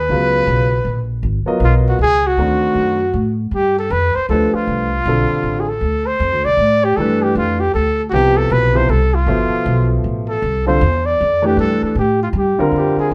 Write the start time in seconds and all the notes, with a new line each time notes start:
Already playing: B4
0.09 C#2 C#3 F#3 B3 F4 B4
0.47 B1
0.85 A#1
1.23 G#1
1.45 F#3 B3 F4 A#4 D#5, muted upright bass stroke
1.60 B1
1.64 F4
1.88 F#4
1.99 C#2 G#4
2.27 F#4
2.37 D2 D#3 A3 C4 D4 F#4
2.75 F#2
3.13 A2
3.51 G2 G4
3.78 A4
3.90 F2 B4
4.16 C5, muted upright bass stroke
4.29 D2 F3 A3 D4 G4 A4 B4
4.53 F4, muted upright bass stroke
4.67 C2
5.05 B1 D3 G3 C4 F4 A4
5.30 muted upright bass stroke
5.43 A1
5.60 G#4
5.69 A4
5.81 D2
6.07 C5
6.20 F2
6.32 D2
6.45 C2 D5
6.57 A2
6.84 G4
6.97 G2 E3 A3 D4 G4 A4 B4
7.23 G4
7.35 F2 F4
7.60 G4
7.74 D2 A4
8.10 C2 C3 F3 F#4 G4
8.14 B3 E4 G4
8.37 A4
8.50 B1 B4
8.74 C3 F3 B3 E4 G4 C5
8.89 C2 A4
9.15 F4
9.26 G1 B2 F3 A4 C5 E5
9.52 muted upright bass stroke
9.66 B1
10.04 A1
10.28 A4
10.42 C2
10.67 D3 G3 C4 F4 A4 C5
10.81 E2
11.06 D5
11.21 F2
11.42 E3 A3 D4 G4 B4
11.57 G2 A4
11.82 A4, muted upright bass stroke
11.95 A2 G4
12.23 F4
12.33 G2
12.38 G4
12.59 D3 G3 C4 F4 A#4, muted upright bass stroke
12.71 F2
12.77 G4
12.96 G#4, muted upright bass stroke